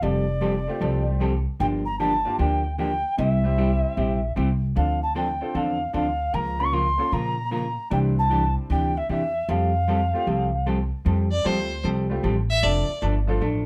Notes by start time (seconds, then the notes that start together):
0.02 F1 F3 G3 C4 G4 A4 D5
0.41 F3 G3 C4 G4 A4
0.67 A3 C4 F4 G4
0.80 C2 F3 G3 C4 G4 A4
1.20 F3 G3 C4 G4 A4
1.60 G1 D3 F3 A#3 D4 G4 G5
1.85 A#5
1.99 D3 F3 A#3 D4 G4 A5
2.25 A#3 D4 F4 G4
2.38 D2 D3 F3 A#3 D4 G4 G5
2.78 D3 F3 A#3 D4 G4 G5
3.17 C2 C3 G3 C4 E4 G4 E5
3.44 G3 C4 E4 G4
3.57 C3 G3 C4 E4 G4
3.97 A#1 C3 G3 C4 E4 G4
4.36 C2 C3 G3 C4 E4 G4
4.75 D2 D3 F3 C4 D4 A4 F5
5.03 A5
5.15 D3 F3 C4 D4 A4 G5
5.41 C4 D4 F4 A4
5.54 E2 D3 F3 C4 D4 A4 F5
5.93 D2 D3 F3 C4 D4 A4 F5
6.33 C#2 C#3 F3 A#3 F4 A#4 A#5
6.59 A#3 C#4 F4 A#4 C#6
6.72 C#3 F3 A#3 F4 A#4 C6
6.98 A#3 C#4 F4 A4
7.12 A#2 C#3 F3 A#3 F4 A#4 A#5
7.51 C#3 F3 A#3 F4 A#4 A#5
7.90 C2 C3 E3 C4 D4 E4 G4 G5
8.19 A5
8.30 C3 E3 D4 G4
8.70 D2 C3 E3 D4 G4 G5
8.97 E5
9.09 E2 C3 E3 D4 G4 E5
9.49 F2 F3 G3 C4 G4 A4 F5
9.88 F3 G3 C4 G4 A4
10.13 A3 C4 F4 G4
10.27 C2 F3 G3 C4 G4 A4
10.66 F3 G3 C4 G4 A4
11.05 F2 F3 G3 C4 G4 A4
11.32 D5
11.44 D2 F3 G3 A3 C4 F4 G4 A4 C5
11.84 C2 F3 G3 C4 G4 A4
12.09 G3 A3 C4 F4 G4
12.23 A1 F3 G3 C4 G4 A4
12.50 E5
12.62 F1 F3 A3 D4 A4 D5
13.02 G1 F3 A3 D4 A4
13.27 F3 A3 D4 F4 A4
13.41 A1 F3 A3 D4 A4